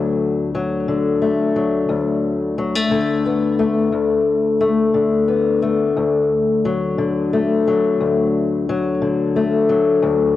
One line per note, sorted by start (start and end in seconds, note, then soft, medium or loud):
0.00 1.88 D2 medium
0.00 0.88 D3 soft
0.00 0.54 F#3 soft
0.00 1.21 A3 soft
0.00 1.34 F#4 soft
0.55 1.55 F#3 soft
0.88 2.91 D3 soft
1.22 2.75 A3 soft
1.56 2.58 F#3 soft
1.89 3.92 D2 medium
2.58 2.75 F#3 soft
2.75 3.58 A3 soft
2.91 4.94 D3 soft
3.26 3.89 B3 soft
3.59 4.60 A3 soft
3.92 5.96 D2 medium
4.61 5.62 A3 soft
4.94 6.98 D3 soft
5.28 5.92 B3 soft
5.62 6.65 A3 soft
5.96 8.00 D2 medium
6.65 7.67 F#3 soft
6.98 9.01 D3 soft
7.33 9.36 A3 soft
7.67 8.69 F#3 soft
8.00 10.02 D2 medium
8.69 9.69 F#3 medium
9.02 10.36 D3 soft
9.36 10.36 A3 soft
9.69 10.36 F#3 soft
10.02 10.36 D2 medium